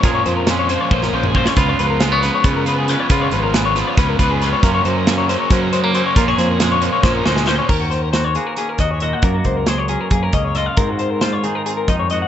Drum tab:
CC |--------------|--------------|--------------|--------------|
HH |x-x-x-x-------|x-x-x-x-x-x-x-|x-x-x-x-x-x-x-|x-x-x-x-x-x-x-|
SD |----o----o---o|----o-o-----o-|----o-o-o---o-|----o-o-------|
T2 |-----------o--|--------------|--------------|--------------|
BD |o-------o---o-|o-------o-----|o-------o-o---|o-------o-----|

CC |--------------|x-------------|--------------|--------------|
HH |x-x-x-x-------|--x-x-x-x-x-x-|x-x-x-x-x-x-x-|x-x-x-x-x-x-x-|
SD |--o-o---o-ooo-|--o-o---o-o---|----o-------o-|----o---------|
T2 |--------------|--------------|--------------|--------------|
BD |o-------o-----|o---------o---|o-o-----o-o---|o---------o---|